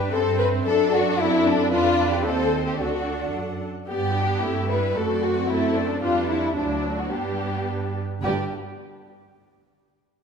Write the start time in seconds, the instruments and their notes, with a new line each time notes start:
Already playing: double bass section G2
0.13 double bass section G2, viola section C4 C5, cello section C4, violin section A4 E5
0.39 violin section B4
0.66 double bass section F#2, viola section D4 A4, cello section D4, violin section A4
0.93 violin section F#4
1.19 cello section C4, violin section E4, viola section A4
1.45 violin section D4
1.72 double bass section F2, viola section D4 B4, cello section D4, violin section F4 D5
2.12 violin section G4
2.25 double bass section D#2, viola section C4 C5, cello section C4, violin section A4 D#5
2.67 violin section G4
2.79 double bass section D2, viola section D4 A4, cello section D4, violin section F#4 F#5
3.34 double bass section F#2
3.87 double bass section G2, viola section B3 G4, violin section G4 D5
4.14 viola section D4
4.41 double bass section G2, viola section A3 E4, cello section C4, violin section E5
4.68 viola section G3, cello section B3, violin section B4
4.95 double bass section F#2, viola section A3 F#4, cello section C4, violin section A4 D5
5.23 violin section F#4
5.48 viola section A3 A4, violin section E4 C5
5.75 violin section D4
6.01 double bass section F2, viola section G3 D4, cello section D4, violin section F4 B4
6.28 violin section E4
6.56 double bass section D2, viola section F#3 D4, cello section A3, violin section D4 C5
6.98 violin section F#4
7.10 double bass section G2, viola section G3 D4, cello section B3, violin section G4 B4
8.22 double bass section G1, cello section G2, viola section G3 D4, violin section G4 B4